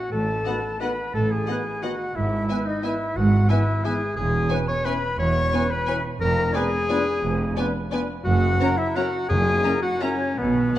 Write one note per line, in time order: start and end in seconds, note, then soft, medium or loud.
0.00 0.11 F#4 medium
0.00 0.11 F#5 medium
0.00 0.14 F#5 medium
0.11 0.40 A1 medium
0.11 0.39 A2 medium
0.11 0.79 A4 medium
0.11 0.82 A5 medium
0.45 0.58 D#3 soft
0.45 0.54 B3 soft
0.45 0.58 F#4 soft
0.45 0.58 B4 medium
0.45 0.53 D#5 soft
0.45 0.54 F#5 soft
0.78 0.92 D#3 medium
0.78 0.90 B3 soft
0.78 0.91 F#4 medium
0.78 1.13 B4 medium
0.78 0.93 B4 soft
0.78 0.88 D#5 soft
0.78 0.90 F#5 soft
0.78 1.15 B5 medium
0.78 1.14 B5 medium
1.14 1.42 A1 medium
1.14 1.42 A2 medium
1.14 1.33 A4 medium
1.14 1.32 A5 medium
1.14 1.21 A5 medium
1.30 1.84 G#4 medium
1.30 1.85 G#5 medium
1.30 1.82 G#5 medium
1.47 1.60 D#3 soft
1.47 1.56 B3 soft
1.47 1.60 F#4 medium
1.47 1.61 B4 medium
1.47 1.55 D#5 soft
1.47 1.55 F#5 medium
1.82 1.95 D#3 medium
1.82 1.91 B3 soft
1.82 2.17 F#4 medium
1.82 1.94 F#4 medium
1.82 1.95 B4 soft
1.82 1.91 D#5 soft
1.82 2.17 F#5 medium
1.82 1.91 F#5 soft
1.82 2.17 F#5 medium
2.15 2.43 G#1 medium
2.15 2.43 G#2 medium
2.15 2.67 E4 medium
2.15 2.68 E5 medium
2.15 2.43 E5 medium
2.49 2.62 E3 medium
2.49 2.58 B3 medium
2.49 2.62 E4 medium
2.49 2.62 B4 medium
2.49 2.57 E5 medium
2.49 2.58 G#5 medium
2.66 2.85 D#4 medium
2.66 2.82 D#5 medium
2.66 2.85 D#5 medium
2.82 2.94 E3 medium
2.82 2.91 B3 soft
2.82 2.94 E4 medium
2.82 3.18 E4 medium
2.82 2.96 B4 soft
2.82 3.18 E5 medium
2.82 2.91 E5 medium
2.82 3.15 E5 medium
2.82 2.92 G#5 soft
3.15 3.44 G#1 medium
3.15 3.44 G#2 medium
3.15 3.49 F#4 medium
3.15 3.50 F#5 medium
3.15 3.52 F#5 medium
3.49 3.62 E3 medium
3.49 3.59 B3 medium
3.49 3.62 E4 soft
3.49 3.86 E4 medium
3.49 3.63 B4 medium
3.49 3.85 E5 medium
3.49 3.58 E5 medium
3.49 3.86 E5 medium
3.49 3.57 G#5 medium
3.83 3.95 E3 medium
3.83 3.93 B3 medium
3.83 3.95 E4 medium
3.83 4.16 G#4 loud
3.83 3.96 B4 medium
3.83 3.92 E5 medium
3.83 4.16 G#5 medium
3.83 3.93 G#5 soft
4.16 4.44 E1 medium
4.16 4.44 E2 medium
4.16 4.53 G#4 loud
4.16 4.69 G#5 medium
4.16 4.53 G#5 medium
4.48 4.61 E3 medium
4.48 4.58 B3 medium
4.48 4.61 C#4 medium
4.48 4.63 B4 medium
4.48 4.58 C#5 medium
4.48 4.58 G#5 medium
4.67 4.86 C#5 medium
4.67 4.87 C#6 medium
4.84 4.96 E3 medium
4.84 4.93 B3 medium
4.84 4.97 C#4 medium
4.84 5.19 B4 loud
4.84 4.98 B4 medium
4.84 4.93 C#5 medium
4.84 4.93 G#5 medium
4.84 5.20 B5 medium
4.84 5.18 B5 medium
5.18 5.47 E1 medium
5.18 5.47 E2 medium
5.18 5.73 C#5 loud
5.18 5.69 C#6 medium
5.18 5.71 C#6 medium
5.52 5.65 E3 medium
5.52 5.61 B3 medium
5.52 5.65 C#4 medium
5.52 5.66 B4 medium
5.52 5.60 C#5 medium
5.52 5.61 G#5 medium
5.70 6.04 B4 medium
5.70 6.03 B5 medium
5.87 5.99 E3 medium
5.87 5.96 B3 medium
5.87 5.99 C#4 medium
5.87 6.00 B4 medium
5.87 5.96 C#5 medium
5.87 5.95 G#5 medium
6.20 6.49 F1 medium
6.20 6.49 F2 medium
6.20 6.57 A#4 loud
6.20 6.54 A#5 medium
6.20 6.52 A#5 medium
6.53 6.68 F3 medium
6.53 6.62 B3 medium
6.53 6.68 D4 medium
6.53 7.75 G#4 loud
6.53 6.67 B4 medium
6.53 6.61 D5 medium
6.53 7.73 G#5 medium
6.53 7.72 G#5 medium
6.53 6.63 G#5 medium
6.89 7.01 F3 medium
6.89 6.98 B3 medium
6.89 7.01 D4 medium
6.89 7.01 B4 medium
6.89 6.97 D5 medium
6.89 6.97 G#5 medium
7.23 7.51 F1 medium
7.23 7.51 F2 medium
7.57 7.69 F3 medium
7.57 7.65 B3 medium
7.57 7.69 D4 medium
7.57 7.69 B4 medium
7.57 7.65 D5 medium
7.57 7.65 G#5 medium
7.91 8.04 F3 medium
7.91 8.00 B3 medium
7.91 8.04 D4 medium
7.91 8.04 B4 medium
7.91 7.99 D5 medium
7.91 8.00 G#5 medium
8.24 8.55 F#1 medium
8.24 8.54 F#2 medium
8.24 8.78 F#4 loud
8.24 8.74 F#5 medium
8.24 8.79 F#5 medium
8.60 8.74 F#3 medium
8.60 8.69 C#4 medium
8.60 8.74 C#4 medium
8.60 8.74 A#4 medium
8.60 8.69 C#5 medium
8.60 8.68 A#5 medium
8.77 8.98 E4 loud
8.77 8.97 E5 medium
8.77 8.86 E5 medium
8.95 9.08 F#3 medium
8.95 9.08 C#4 medium
8.95 9.05 C#4 medium
8.95 9.28 F#4 loud
8.95 9.09 A#4 medium
8.95 9.04 C#5 medium
8.95 9.28 F#5 medium
8.95 9.31 F#5 medium
8.95 9.04 A#5 medium
9.28 9.58 F#1 medium
9.28 9.58 F#2 medium
9.28 9.79 F#2 medium
9.28 9.81 G#4 loud
9.28 9.84 G#5 medium
9.28 9.82 G#5 medium
9.63 9.79 F#3 medium
9.63 9.72 C#4 medium
9.63 9.78 E4 medium
9.63 9.78 A#4 medium
9.63 9.71 E5 medium
9.63 9.72 A#5 medium
9.82 10.04 F#4 loud
9.82 10.01 F#5 medium
9.82 10.00 F#5 medium
10.01 10.15 F#3 medium
10.01 10.10 C#4 medium
10.01 10.40 C#4 loud
10.01 10.15 E4 medium
10.01 10.15 A#4 soft
10.01 10.39 C#5 medium
10.01 10.36 C#5 medium
10.01 10.09 E5 medium
10.01 10.09 A#5 medium
10.37 10.70 B1 medium
10.37 10.70 B2 medium
10.37 10.45 B2 soft
10.37 10.79 B3 medium
10.37 10.79 B4 medium
10.54 10.61 B2 soft
10.62 10.70 B2 soft
10.71 10.78 B2 soft